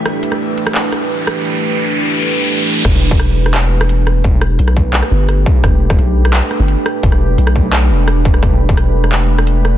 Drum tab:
CC |----------------|----------------|x---------------|----------------|
HH |--x---x--xx---x-|----------------|x---x---xx--x---|x---x---xx--x---|
CP |--------x-------|----------------|--------x-------|--------x-------|
SD |r--r---r--r---r-|----------------|r---r--r---r--r-|--r--r---r--r---|
BD |----------------|----------------|o--o------------|o-----o-------o-|

CC |----------------|----------------|----------------|
HH |x---x---xx--x---|x---x---xx--x---|x---x---xx--x---|
CP |--------x-------|--------x-------|--------x-------|
SD |r--r---r--r---r-|-r---r--r---r--r|r---r--r---r--r-|
BD |o--o------------|o-----o-------o-|o--o------------|